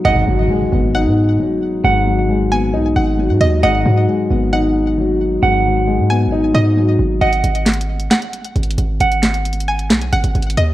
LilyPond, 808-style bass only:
\new Staff \with { instrumentName = "808-style bass" } { \clef bass \time 4/4 \key gis \minor \tempo 4 = 134 gis,,8 gis,,8 r8 gis,,8. gis,8. r4 | gis,,2 b,,8 gis,,8. gis,16 dis,8 | gis,,8 gis,8 r8 gis,,2~ gis,,8 | gis,,4~ gis,,16 gis,8~ gis,32 gis,,8~ gis,,32 gis,4 gis,,8 |
gis,,8 gis,,4. r4 gis,,8 gis,,8 | gis,,2 b,,8 gis,,16 gis,,16 gis,,8 dis,8 | }